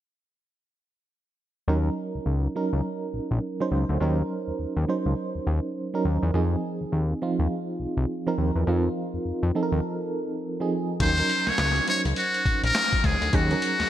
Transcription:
1.68 analog synth bass D#2, fm electric piano F#3 C#4 D#4 A#4
2.15 analog synth bass C#2
2.26 analog synth bass C#2
2.56 fm electric piano F#3 C#4 D#4 A#4
2.73 analog synth bass C#2
3.13 analog synth bass A#1
3.31 analog synth bass A#1
3.60 fm electric piano F#3 C#4 D#4 C5
3.71 analog synth bass C#2
3.89 analog synth bass D2
4.00 analog synth bass D#2, fm electric piano F#3 C#4 D#4 A#4
4.47 analog synth bass D#2
4.59 analog synth bass D#2
4.77 analog synth bass D#2
4.88 fm electric piano F#3 C#4 D#4 C5
5.06 analog synth bass C#2
5.35 analog synth bass D#2
5.47 analog synth bass D#2
5.94 fm electric piano F#3 C#4 D#4 A#4
6.05 analog synth bass D#2
6.23 analog synth bass E2
6.34 analog synth bass F2, fm electric piano F3 C4 D#4 G#4
6.81 analog synth bass D#2
6.92 analog synth bass D#2
7.22 fm electric piano F3 C4 D#4 F4
7.39 analog synth bass D#2
7.80 analog synth bass C2
7.97 analog synth bass C2
8.27 fm electric piano F3 C4 D#4 A#4
8.38 analog synth bass D#2
8.55 analog synth bass E2
8.67 analog synth bass F2, fm electric piano F3 C4 D#4 F4
9.14 analog synth bass F2
9.25 analog synth bass F2
9.43 analog synth bass F2
9.55 fm electric piano F3 C4 D#4 A4
9.63 fm electric piano A#4
9.72 analog synth bass D#2
10.60 fm electric piano F3 C4 D#4 G#4
11.00 analog synth bass D#2, fm electric piano F#3 C#4 D#4 A#4, muted trumpet C5, kick, closed hi-hat, crash
11.18 fm electric piano F#3 C#4 D#4 A#4, closed hi-hat
11.29 closed hi-hat
11.47 analog synth bass C#2, muted trumpet C#5, snare, closed hi-hat
11.58 analog synth bass C#2, snare, clap, closed hi-hat
11.76 closed hi-hat
11.88 fm electric piano F#3 C#4 D#4 C5, muted trumpet C#5, closed hi-hat
12.05 analog synth bass C#2, closed hi-hat
12.16 muted trumpet F#4, closed hi-hat
12.34 closed hi-hat
12.45 analog synth bass A#1, kick, closed hi-hat
12.63 analog synth bass A#1, muted trumpet A#4, closed hi-hat
12.75 snare, clap, closed hi-hat
12.93 kick, closed hi-hat
13.04 analog synth bass C#2, muted trumpet G#4, kick, snare, closed hi-hat
13.21 analog synth bass D2, closed hi-hat
13.33 analog synth bass D#2, fm electric piano F#3 C#4 D#4 G#4, muted trumpet F#4, kick, closed hi-hat
13.51 fm electric piano F#3 C#4 D#4 A#4, closed hi-hat
13.62 closed hi-hat
13.80 analog synth bass D#2, snare, closed hi-hat

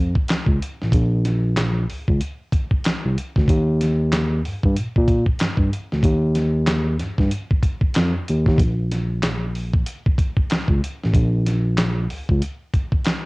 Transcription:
Already playing: tine electric piano F2
0.15 kick
0.28 tine electric piano C#2, snare, clap, closed hi-hat
0.47 tine electric piano C#2, kick
0.62 closed hi-hat
0.82 tine electric piano A1, snare
0.92 tine electric piano A#1, kick, closed hi-hat
1.25 snare, closed hi-hat
1.57 snare, clap, closed hi-hat
1.90 tine electric piano C#2, open hi-hat
2.08 tine electric piano C#2, kick
2.21 closed hi-hat
2.52 kick, closed hi-hat
2.71 kick
2.84 tine electric piano C2, snare, clap, closed hi-hat
3.06 tine electric piano C2
3.18 closed hi-hat
3.36 tine electric piano D2, kick, snare
3.48 tine electric piano D#2, kick, closed hi-hat
3.81 snare, closed hi-hat
4.12 snare, clap, closed hi-hat
4.45 tine electric piano G2, open hi-hat
4.63 tine electric piano G2, kick
4.76 tine electric piano A#2, closed hi-hat
4.96 tine electric piano A#2, kick
5.08 kick, closed hi-hat
5.26 kick
5.39 tine electric piano G2, snare, clap, closed hi-hat
5.57 tine electric piano G2, kick
5.73 closed hi-hat
5.92 tine electric piano D2, snare
6.03 tine electric piano D#2, kick, closed hi-hat
6.35 snare, closed hi-hat
6.67 snare, clap, closed hi-hat
6.99 tine electric piano G2, snare, closed hi-hat
7.18 tine electric piano G2, kick, snare
7.31 closed hi-hat
7.51 kick
7.63 kick, closed hi-hat
7.81 kick
7.94 tine electric piano F2, snare, clap, closed hi-hat
8.28 tine electric piano D#2, closed hi-hat
8.46 tine electric piano D#2, kick, snare
8.58 tine electric piano A#1, kick, closed hi-hat
8.92 snare, closed hi-hat
9.23 snare, clap, closed hi-hat
9.55 open hi-hat
9.74 kick
9.86 closed hi-hat
10.06 kick
10.18 kick, closed hi-hat
10.37 kick
10.50 tine electric piano C#2, snare, clap, closed hi-hat
10.68 tine electric piano C#2, kick
10.84 closed hi-hat
11.03 tine electric piano A1, snare
11.14 tine electric piano A#1, kick, closed hi-hat
11.46 snare, closed hi-hat
11.77 snare, clap, closed hi-hat
12.10 tine electric piano C#2, open hi-hat
12.29 tine electric piano C#2, kick
12.42 closed hi-hat
12.73 kick, closed hi-hat
12.92 kick
13.04 tine electric piano C2, snare, clap, closed hi-hat

